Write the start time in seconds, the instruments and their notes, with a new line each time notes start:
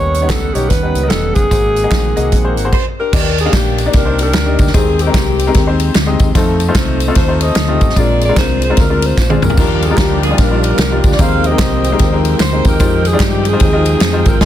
Already playing: fingered electric bass D#2, grand piano D#3 B3 D#4 G4 C#5 D#5 G#5, tonewheel organ D#3 G3 B3 C#4 F#5, alto saxophone C#5
0.14 closed hi-hat, tambourine
0.22 grand piano B3 D#4 G4 C#5
0.29 fingered electric bass C#2, alto saxophone A4, kick, snare, clap, closed hi-hat, tambourine
0.54 fingered electric bass B1, grand piano B3 D#4 G4 C#5, alto saxophone G4, closed hi-hat, tambourine
0.69 fingered electric bass D#2, alto saxophone B4, kick, snare, closed hi-hat, tambourine
0.83 grand piano B3 D#4 G4 B4
0.95 fingered electric bass C#2, closed hi-hat, tambourine
1.03 grand piano B3 D#4 F#4 D#5
1.08 fingered electric bass E1, grand piano G4, alto saxophone A4, snare, clap, closed hi-hat, tambourine
1.34 fingered electric bass F#1, alto saxophone G#4, kick, closed hi-hat, tambourine
1.51 fingered electric bass G#1, grand piano G#2 A#3 F#4 G#4 C5, tonewheel organ G#3 A#3 C4, kick, closed hi-hat, tambourine
1.76 closed hi-hat, tambourine
1.84 grand piano A#3 F#4 G#4 D#5
1.91 fingered electric bass A#1, kick, snare, clap, closed hi-hat, tambourine
2.16 fingered electric bass C2, grand piano A#3 F#4 G#4 D#5, closed hi-hat, tambourine
2.32 fingered electric bass A#1, kick, closed hi-hat, tambourine
2.44 grand piano A#3 F#4 G#4 C5
2.57 fingered electric bass G#1, closed hi-hat, tambourine
2.64 grand piano A#3 F#4 G#4 C5
2.72 saxophone section C5, kick, crash
2.99 saxophone section D4 G4 A#4
3.13 fingered electric bass D#2, grand piano D#3 A#3 D4 D#4 G4 D5, kick, crash, tambourine
3.38 saxophone section G#4, ride, tambourine
3.45 grand piano A#3 D4 D#4 G4 F5
3.53 fingered electric bass A#1, saxophone section A#3 D4 G4, kick, snare, clap, ride, tambourine
3.78 ride, tambourine
3.86 grand piano A#3 D4 D#4 G4 D5
3.93 fingered electric bass C2, saxophone section D4 G4 A#4, kick, snare, ride, tambourine
4.05 grand piano A#3 D4 D#4 G4 C5
4.19 saxophone section D4 G4 A#4, ride, tambourine
4.33 fingered electric bass D2, snare, clap, ride, tambourine
4.45 grand piano A#3 D4 D#4 G4 D#5
4.59 fingered electric bass D2, kick, ride, tambourine
4.67 snare
4.74 fingered electric bass D#2, grand piano D#3 G#3 C4 D#4 G4 C5, saxophone section C4 G#4, kick, ride, tambourine
4.99 saxophone section C4 G4, ride, tambourine
5.07 grand piano G#3 C4 D#4 G4 A#4
5.14 fingered electric bass C2, kick, snare, clap, ride, tambourine
5.39 ride, tambourine
5.47 grand piano G#3 C4 D#4 G4 A#4
5.54 fingered electric bass D#2, kick, snare, ride, tambourine
5.67 grand piano G#3 C4 D#4 G4 C5
5.80 ride, tambourine
5.94 fingered electric bass D2, snare, clap, ride, tambourine
6.06 grand piano G#3 C4 D#4 G4 D#5
6.19 fingered electric bass D#2, kick, ride, tambourine
6.35 fingered electric bass F2, grand piano A3 C4 D#4 F4 C5, saxophone section C4 D#4 A4, kick, ride, tambourine
6.60 ride, tambourine
6.68 grand piano A3 C4 D#4 F4 C5
6.75 fingered electric bass C2, saxophone section D#4 A4 C5, kick, snare, clap, ride, tambourine
7.00 ride, tambourine
7.08 grand piano A3 C4 D#4 F4 A4
7.15 fingered electric bass D#2, saxophone section D#4 A4 C5, kick, snare, ride, tambourine
7.28 grand piano A3 C4 D#4 F4 C5
7.41 saxophone section A4 C5 D#5, ride, tambourine
7.55 fingered electric bass D2, snare, clap, ride, tambourine
7.68 grand piano A3 C4 D#4 F4 G4
7.81 fingered electric bass A1, kick, ride, tambourine
7.89 snare
7.96 fingered electric bass A#1, grand piano A#2 G#3 C4 D4 F4 A#4, saxophone section F4 G#4 D5, kick, ride, tambourine
8.21 saxophone section D5, ride, tambourine
8.29 grand piano G#3 C4 D4 F4 A#4
8.36 fingered electric bass C2, saxophone section C5, kick, snare, clap, ride, tambourine
8.62 saxophone section C5, ride, tambourine
8.70 grand piano G#3 C4 D4 F4 A#4
8.77 fingered electric bass D2, saxophone section D4 F4 A#4, kick, snare, ride, tambourine
8.90 grand piano G#3 C4 D4 F4 A#4
9.02 saxophone section C5, ride, tambourine
9.17 fingered electric bass A#1, saxophone section C5, kick, snare, clap, tambourine
9.30 grand piano G#3 C4 D4 F4 G#4, high tom
9.42 fingered electric bass C2, saxophone section D4 G4 A#4, mid tom, tambourine
9.50 floor tom
9.57 fingered electric bass D#2, grand piano D#3 G3 D4 D#4 F4 A#4, tonewheel organ F3 G3 A#3 D4 F4, kick, tambourine, crash
9.82 saxophone section G#4, ride, tambourine
9.91 grand piano G3 D4 D#4 F4 A#4
9.98 fingered electric bass D2, saxophone section G4, kick, snare, clap, ride, tambourine
10.23 saxophone section G#4, ride, tambourine
10.30 grand piano G3 D4 D#4 F4 G4
10.38 fingered electric bass A#1, saxophone section D4 G4 A#4, kick, snare, ride, tambourine
10.51 grand piano G3 D4 D#4 F4 A#4
10.63 ride, tambourine
10.78 fingered electric bass C2, saxophone section D4 G4 A#4, snare, clap, ride, tambourine
10.91 grand piano G3 D4 D#4 F4 G4
11.04 fingered electric bass D2, kick, ride, tambourine
11.12 saxophone section D5, snare
11.19 fingered electric bass D#2, grand piano D#3 G#3 C4 D#4 G4 A#4, tonewheel organ D#3 C4 G5, saxophone section G#4 C5 F5, kick, ride, tambourine
11.44 saxophone section G4 C5 D#5, ride, tambourine
11.51 grand piano G#3 C4 D#4 G4 A#4
11.59 fingered electric bass C2, kick, snare, clap, ride, tambourine
11.84 ride, tambourine
11.92 grand piano G#3 C4 D#4 G4 A#4
11.99 fingered electric bass D#2, kick, snare, ride, tambourine
12.12 grand piano G#3 C4 D#4 G4 A#4
12.25 ride, tambourine
12.39 fingered electric bass D2, saxophone section C5, snare, clap, ride, tambourine
12.52 grand piano G#3 C4 D#4 G4 A#4
12.65 fingered electric bass D#2, saxophone section D#4 G4 A#4, kick, ride, tambourine
12.80 fingered electric bass F2, tonewheel organ F3 D#4 G5, grand piano G#3 D#4 F4 G4 C5, kick, ride, tambourine
13.05 saxophone section G#4, ride, tambourine
13.13 grand piano G#3 D#4 F4 G4 D5
13.20 fingered electric bass G2, saxophone section G4, kick, snare, clap, ride, tambourine
13.45 saxophone section C4 D#4 G#4, ride, tambourine
13.53 grand piano G#3 D#4 F4 G4 C5
13.60 fingered electric bass D#2, kick, ride, tambourine
13.73 grand piano G#3 D#4 F4 G4 D#5
13.85 ride, tambourine
14.00 fingered electric bass F2, snare, clap, ride, tambourine
14.13 grand piano G#3 D#4 F4 G4 C5
14.25 fingered electric bass G#1, saxophone section D#4 F4 A#4, kick, ride, tambourine
14.41 fingered electric bass A#1, grand piano A#2 A#3 D#4 F4 G#4 C5, tonewheel organ A#3 C4 G#4, kick, snare, crash